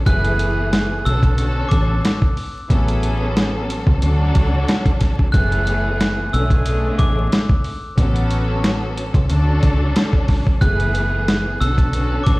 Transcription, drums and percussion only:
0.06 kick loud
0.06 closed hi-hat loud
0.24 closed hi-hat medium
0.39 closed hi-hat medium
0.73 snare loud
0.73 closed hi-hat medium
1.06 closed hi-hat medium
1.23 kick loud
1.23 closed hi-hat soft
1.38 closed hi-hat loud
1.71 kick loud
1.71 closed hi-hat medium
2.05 snare loud
2.05 closed hi-hat loud
2.22 kick loud
2.37 open hi-hat medium
2.70 kick loud
2.70 closed hi-hat loud
2.88 closed hi-hat medium
3.03 closed hi-hat medium
3.37 snare loud
3.37 closed hi-hat medium
3.70 closed hi-hat medium
3.87 kick loud
4.02 closed hi-hat loud
4.35 kick loud
4.35 closed hi-hat medium
4.68 snare loud
4.68 closed hi-hat loud
4.86 kick loud
4.86 closed hi-hat soft
5.01 kick medium
5.01 snare soft
5.01 closed hi-hat medium
5.19 kick medium
5.34 kick loud
5.34 closed hi-hat loud
5.52 closed hi-hat medium
5.67 closed hi-hat medium
6.01 snare loud
6.01 closed hi-hat medium
6.34 closed hi-hat medium
6.50 kick medium
6.50 closed hi-hat soft
6.66 closed hi-hat loud
6.99 kick loud
6.99 closed hi-hat medium
7.32 snare loud
7.32 closed hi-hat loud
7.49 kick loud
7.64 open hi-hat medium
7.98 kick loud
7.98 closed hi-hat loud
8.16 closed hi-hat medium
8.31 closed hi-hat medium
8.64 snare loud
8.64 closed hi-hat medium
8.97 closed hi-hat medium
9.14 kick loud
9.14 closed hi-hat soft
9.29 closed hi-hat loud
9.63 kick loud
9.63 closed hi-hat medium
9.96 snare loud
9.96 closed hi-hat loud
10.13 kick loud
10.28 kick medium
10.28 snare soft
10.28 open hi-hat medium
10.47 kick loud
10.61 kick loud
10.61 closed hi-hat loud
10.80 closed hi-hat medium
10.95 closed hi-hat medium
11.28 snare loud
11.28 closed hi-hat medium
11.62 closed hi-hat medium
11.78 kick loud
11.78 closed hi-hat soft
11.93 closed hi-hat loud
12.27 kick loud
12.27 closed hi-hat medium

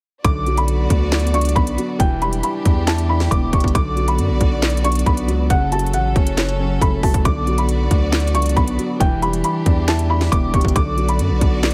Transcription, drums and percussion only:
0.25 kick loud
0.25 closed hi-hat medium
0.46 closed hi-hat soft
0.57 closed hi-hat medium
0.68 closed hi-hat medium
0.90 kick loud
0.90 closed hi-hat medium
1.12 snare loud
1.12 clap loud
1.12 closed hi-hat soft
1.19 closed hi-hat medium
1.27 closed hi-hat medium
1.34 closed hi-hat medium
1.41 closed hi-hat medium
1.45 closed hi-hat medium
1.49 closed hi-hat medium
1.56 kick medium
1.56 closed hi-hat soft
1.67 closed hi-hat medium
1.78 closed hi-hat medium
2.00 kick loud
2.00 closed hi-hat medium
2.22 closed hi-hat soft
2.33 closed hi-hat medium
2.43 closed hi-hat medium
2.65 kick loud
2.65 closed hi-hat medium
2.87 snare loud
2.87 clap loud
2.87 closed hi-hat medium
2.98 closed hi-hat medium
3.20 snare medium
3.31 kick medium
3.31 closed hi-hat medium
3.53 kick loud
3.53 closed hi-hat medium
3.60 kick medium
3.60 closed hi-hat medium
3.68 closed hi-hat medium
3.75 kick loud
3.75 closed hi-hat medium
3.97 closed hi-hat soft
4.08 closed hi-hat medium
4.18 closed hi-hat medium
4.41 kick loud
4.41 closed hi-hat medium
4.62 snare loud
4.62 clap loud
4.62 closed hi-hat soft
4.70 closed hi-hat medium
4.77 closed hi-hat medium
4.84 closed hi-hat medium
4.92 closed hi-hat medium
4.95 closed hi-hat medium
4.99 closed hi-hat medium
5.06 kick medium
5.06 closed hi-hat soft
5.17 closed hi-hat medium
5.28 closed hi-hat medium
5.50 kick loud
5.50 closed hi-hat medium
5.72 closed hi-hat medium
5.79 closed hi-hat medium
5.86 closed hi-hat medium
5.93 closed hi-hat medium
6.16 kick loud
6.16 closed hi-hat soft
6.27 closed hi-hat medium
6.38 snare loud
6.38 clap loud
6.38 closed hi-hat medium
6.49 closed hi-hat soft
6.81 kick loud
6.81 closed hi-hat medium
7.03 kick medium
7.03 closed hi-hat soft
7.03 open hi-hat medium
7.14 kick medium
7.14 closed hi-hat medium
7.25 kick loud
7.25 closed hi-hat medium
7.47 closed hi-hat soft
7.58 closed hi-hat medium
7.69 closed hi-hat medium
7.91 kick loud
7.91 closed hi-hat medium
8.13 snare loud
8.13 clap loud
8.13 closed hi-hat soft
8.20 closed hi-hat medium
8.27 closed hi-hat medium
8.35 closed hi-hat medium
8.42 closed hi-hat medium
8.46 closed hi-hat medium
8.49 closed hi-hat medium
8.57 kick medium
8.57 closed hi-hat soft
8.68 closed hi-hat medium
8.79 closed hi-hat medium
9.00 kick loud
9.00 closed hi-hat medium
9.22 closed hi-hat soft
9.33 closed hi-hat medium
9.44 closed hi-hat medium
9.66 kick loud
9.66 closed hi-hat medium
9.88 snare loud
9.88 clap medium
9.88 closed hi-hat medium
9.99 closed hi-hat medium
10.21 snare medium
10.32 kick loud
10.32 closed hi-hat medium
10.54 kick medium
10.54 closed hi-hat medium
10.61 kick medium
10.61 closed hi-hat medium
10.68 closed hi-hat medium
10.76 kick loud
10.76 closed hi-hat medium
10.98 closed hi-hat soft
11.09 closed hi-hat medium
11.19 closed hi-hat medium
11.41 kick loud
11.41 closed hi-hat medium
11.63 snare loud
11.63 clap loud
11.63 closed hi-hat soft
11.71 closed hi-hat medium

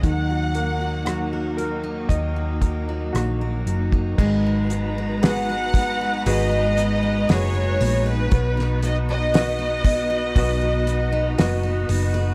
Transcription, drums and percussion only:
0.03 kick medium
0.03 closed hi-hat medium
0.55 closed hi-hat medium
1.06 cross-stick medium
1.06 closed hi-hat medium
1.58 closed hi-hat medium
2.09 kick medium
2.09 closed hi-hat medium
2.62 kick medium
2.62 closed hi-hat medium
3.15 cross-stick medium
3.15 closed hi-hat medium
3.67 closed hi-hat medium
3.92 kick medium
4.18 kick loud
4.18 crash medium
4.70 hi-hat pedal medium
4.70 open hi-hat medium
5.23 snare loud
5.23 hi-hat pedal medium
5.23 open hi-hat medium
5.74 kick medium
5.74 hi-hat pedal medium
5.74 open hi-hat medium
6.26 hi-hat pedal medium
6.26 open hi-hat medium
6.78 hi-hat pedal medium
6.78 open hi-hat medium
7.29 snare loud
7.29 hi-hat pedal medium
7.29 open hi-hat medium
7.81 hi-hat pedal medium
7.81 open hi-hat medium
8.32 kick loud
8.32 hi-hat pedal medium
8.32 open hi-hat medium
8.59 snare soft
8.83 hi-hat pedal medium
8.83 open hi-hat medium
9.34 snare loud
9.34 hi-hat pedal medium
9.34 open hi-hat loud
9.84 kick medium
9.84 hi-hat pedal medium
9.84 open hi-hat medium
10.36 kick medium
10.36 hi-hat pedal medium
10.36 open hi-hat medium
10.87 hi-hat pedal medium
10.87 open hi-hat medium
11.38 snare loud
11.38 hi-hat pedal medium
11.38 open hi-hat medium
11.89 hi-hat pedal medium
11.89 open hi-hat medium

